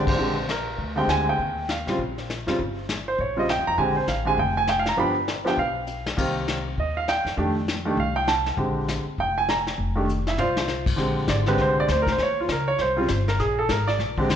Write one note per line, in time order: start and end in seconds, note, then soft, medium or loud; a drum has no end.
0.00 0.16 A1 medium
0.00 0.16 D3 medium
0.00 0.16 G#3 medium
0.00 0.17 C4 medium
0.00 0.17 G4 medium
0.07 0.46 C5 medium
0.07 kick medium
0.07 ride medium
0.17 0.75 A#1 medium
0.17 0.34 D3 medium
0.17 0.34 G#3 medium
0.17 0.35 C4 medium
0.17 0.35 G4 medium
0.17 brush sweep soft
0.49 0.94 A#4 medium
0.49 snare medium
0.49 hi-hat pedal soft
0.78 1.06 D2 medium
0.78 brush sweep soft
0.78 kick soft
0.96 1.35 D3 medium
0.96 1.35 G#3 medium
0.96 1.36 C4 medium
0.96 1.36 G4 medium
0.96 1.08 G5 medium
1.07 1.35 D2 medium
1.07 1.26 G#5 medium
1.07 snare medium
1.07 hi-hat pedal medium
1.29 1.67 G5 medium
1.39 1.83 D#2 medium
1.39 brush sweep soft
1.39 kick soft
1.69 2.14 F5 medium
1.69 snare medium
1.69 hi-hat pedal soft
1.86 1.97 A#2 medium
1.86 1.97 C#3 medium
1.86 1.98 G3 medium
1.86 1.98 C4 medium
1.86 1.98 F4 medium
1.86 snare soft
1.98 2.43 A#1 medium
1.98 brush sweep soft
1.98 kick soft
2.18 snare soft
2.30 snare medium
2.30 hi-hat pedal soft
2.47 2.57 E2 medium
2.47 2.57 C#3 medium
2.47 2.57 G3 medium
2.47 2.57 C4 medium
2.47 2.57 F4 medium
2.47 snare medium
2.59 3.15 G1 medium
2.59 brush sweep soft
2.59 kick soft
2.89 snare medium
2.89 hi-hat pedal medium
3.08 3.18 C5 medium
3.18 3.55 A#1 medium
3.18 3.37 C#5 medium
3.18 brush sweep soft
3.18 kick soft
3.37 3.47 C#3 medium
3.37 3.47 G3 medium
3.37 3.47 C4 medium
3.37 3.47 F4 medium
3.37 3.49 D#5 medium
3.49 3.67 G5 medium
3.49 snare medium
3.49 hi-hat pedal medium
3.58 3.67 D#2 medium
3.67 3.77 F2 medium
3.67 3.78 A#5 medium
3.78 4.06 A#1 medium
3.78 3.94 D3 medium
3.78 3.94 G#3 medium
3.78 3.95 C4 medium
3.78 3.95 G4 medium
3.78 3.96 G#5 medium
3.78 brush sweep soft
3.78 kick soft
3.97 4.08 C5 medium
4.07 4.35 A1 medium
4.07 4.26 F5 medium
4.07 snare medium
4.07 hi-hat pedal medium
4.25 4.36 D3 medium
4.25 4.36 G#3 medium
4.25 4.36 C4 medium
4.25 4.37 G4 medium
4.25 4.38 G#5 medium
4.37 4.94 F1 medium
4.37 4.56 G5 medium
4.37 brush sweep soft
4.37 kick soft
4.57 4.68 G#5 medium
4.67 4.78 G5 medium
4.67 snare medium
4.67 hi-hat pedal medium
4.79 4.88 F5 medium
4.86 4.98 A#5 medium
4.86 snare soft
4.97 5.54 G1 medium
4.97 5.14 F3 medium
4.97 5.14 B3 medium
4.97 5.14 D4 medium
4.97 5.14 G4 medium
4.97 5.44 B5 medium
4.97 brush sweep soft
4.97 kick soft
5.28 snare medium
5.28 hi-hat pedal soft
5.44 5.56 F3 medium
5.44 5.56 B3 medium
5.44 5.56 D4 medium
5.44 5.57 G4 medium
5.44 5.58 G5 medium
5.44 snare soft
5.58 6.15 B1 medium
5.58 6.03 F5 medium
5.58 brush sweep soft
5.58 kick soft
5.87 hi-hat pedal soft
6.06 snare medium
6.17 6.75 C2 medium
6.17 6.62 D#3 medium
6.17 6.62 A#3 medium
6.17 6.62 C4 medium
6.17 6.62 G4 medium
6.17 brush sweep soft
6.17 kick medium
6.17 crash medium
6.48 snare medium
6.48 hi-hat pedal soft
6.78 7.23 D#2 medium
6.78 6.96 D#5 medium
6.78 brush sweep soft
6.78 kick soft
6.97 7.08 F5 medium
7.08 7.26 G5 medium
7.08 snare medium
7.08 hi-hat pedal medium
7.25 7.36 E2 medium
7.25 snare soft
7.37 7.95 F2 medium
7.37 7.54 D#3 medium
7.37 7.54 A3 medium
7.37 7.54 D4 medium
7.37 7.55 G4 medium
7.37 brush sweep soft
7.37 kick soft
7.68 snare medium
7.68 hi-hat pedal medium
7.85 7.96 D#3 medium
7.85 7.96 A3 medium
7.85 7.97 D4 medium
7.85 7.97 G4 medium
7.97 8.54 C2 medium
7.97 8.17 F5 medium
7.97 brush sweep soft
7.97 kick soft
8.16 8.27 G5 medium
8.28 8.46 A5 medium
8.28 snare medium
8.28 hi-hat pedal soft
8.46 snare soft
8.57 9.02 A#1 medium
8.57 9.02 D3 medium
8.57 9.02 G#3 soft
8.57 9.03 C4 soft
8.57 9.03 G4 medium
8.57 brush sweep soft
8.57 kick soft
8.88 snare medium
8.88 hi-hat pedal medium
9.05 muted upright bass stroke soft
9.18 9.75 F1 medium
9.18 9.37 G5 medium
9.18 brush sweep soft
9.18 kick soft
9.38 9.48 G#5 medium
9.49 9.60 A#5 medium
9.49 snare medium
9.49 hi-hat pedal soft
9.67 snare soft
9.78 10.35 F1 medium
9.78 brush sweep medium
9.78 kick soft
9.95 10.06 D#3 medium
9.95 10.07 A3 medium
9.95 10.07 D4 medium
9.95 10.07 G4 medium
10.09 hi-hat pedal medium
10.27 10.39 E4 medium
10.27 10.38 E5 medium
10.27 snare soft
10.37 10.95 C2 medium
10.37 10.84 F4 medium
10.37 10.84 C5 medium
10.37 10.84 D5 medium
10.37 10.84 F5 medium
10.37 floor tom medium
10.57 snare medium
10.68 snare medium
10.68 hi-hat pedal medium
10.86 kick medium
10.86 crash medium
10.96 11.27 A#1 medium
10.96 11.42 D3 medium
10.96 11.42 G#3 medium
10.96 11.43 C4 medium
10.96 11.42 G4 medium
10.96 brush sweep soft
10.96 kick soft
10.96 snare soft
11.28 11.57 G#1 medium
11.28 11.47 D5 medium
11.28 kick soft
11.28 snare medium
11.28 hi-hat pedal soft
11.46 11.86 D3 medium
11.46 11.86 G#3 medium
11.46 11.86 C4 medium
11.46 11.87 G4 medium
11.46 11.59 B4 medium
11.46 snare soft
11.58 11.87 C2 medium
11.58 11.78 C5 medium
11.58 brush sweep soft
11.58 kick soft
11.58 snare soft
11.80 11.90 D5 medium
11.88 12.17 D2 medium
11.88 12.00 C5 medium
11.88 kick soft
11.88 snare medium
11.88 hi-hat pedal soft
12.02 12.10 A#4 medium
12.07 kick medium
12.07 snare soft
12.12 12.20 C5 medium
12.18 12.47 D#2 medium
12.18 brush sweep soft
12.18 kick soft
12.18 snare soft
12.23 12.38 C#5 medium
12.41 12.50 F4 medium
12.48 12.78 C#2 medium
12.48 12.68 A#4 medium
12.48 kick soft
12.48 snare medium
12.48 hi-hat pedal medium
12.68 12.79 C#5 medium
12.78 13.08 C2 medium
12.78 13.25 C5 medium
12.78 brush sweep soft
12.78 kick soft
12.78 snare soft
12.97 13.07 C#3 medium
12.97 13.08 G3 medium
12.97 13.08 C4 medium
12.97 13.08 F4 medium
13.08 13.38 G1 medium
13.08 kick soft
13.08 snare medium
13.08 hi-hat pedal soft
13.28 13.39 A#4 medium
13.28 snare soft
13.39 13.68 A#1 medium
13.39 13.57 G#4 medium
13.39 brush sweep soft
13.39 kick soft
13.39 snare soft
13.59 13.69 A4 medium
13.69 13.98 G#1 medium
13.69 13.88 A#4 medium
13.69 kick soft
13.69 snare medium
13.69 hi-hat pedal medium
13.87 14.36 D5 medium
13.87 snare soft
13.99 14.28 A#1 medium
13.99 brush sweep soft
13.99 kick soft
13.99 snare soft
14.18 14.28 D3 medium
14.18 14.28 G#3 medium
14.18 14.28 C4 medium
14.18 14.29 G4 medium
14.18 kick medium
14.29 14.36 D2 medium
14.29 kick soft
14.29 snare medium
14.29 hi-hat pedal medium